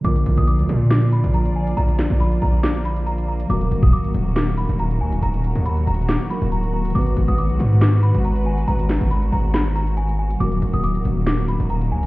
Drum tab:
HH |x-----x-----x-----x-----x-----x-----x-----------x-----x-----x-----x-----x-----x-----------x-----|x-----x-----x-----x-----x-----x-----o-----------x-----x-----x-----x-----x-----x-----------x-----|x-----x-----x-----x-----x-----x-----x-----------x-----x-----x-----x-----x-----x-----------x-----|x-----x-----x-----x-----x-----x-----x---x---x---x-----x-----x-----x-----x-----x-----------x--x--|
CP |------------------------------------------------x-----------------------------------------------|------------x-----------------------------------x-----------------------------------------------|------------------------------------------------x-----------------------------------------------|------------------------------------------------x-----------------------------------------------|
SD |------------------------------------------------o-----------------------------------------------|------------o-----------------------------------o-----------------------------------------------|------------------------------------------------o-----------------------------------------------|------------------------------------------------o-----------------------------------------------|
BD |------------------------------------------------------------------------------------------------|------------------------------------------------------------------------------------------------|------------------o-----------------------------------------------------------------------------|------------------------------------------------------------------------------------------------|

HH |x--x--x-----x-----x-----x-----x-----x-----------x-----x-----x-----x-----x-----x-----------x-----|x-----x-----x-----x-----x-----x-----o-----------x-----x-----x-----x-----x-----x-----------x-----|x-----x-----x-----x-----x-----x-----x-----------x-----x-----x-----x-----x-----x-----------x-----|
CP |------------------------------------------------x-----------------------------------------------|------------x-----------------------------------x-----------------------------------------------|------------------------------------------------x-----------------------------------------------|
SD |------------------------------------------------o-----------------------------------------------|------------o-----------------------------------o-----------------------------------------------|------------------------------------------------o-----------------------------------------------|
BD |------------------------------------------------------------------------------------------------|------------------------------------------------------------------------------------------------|------------------------------------------------------------------------------------------------|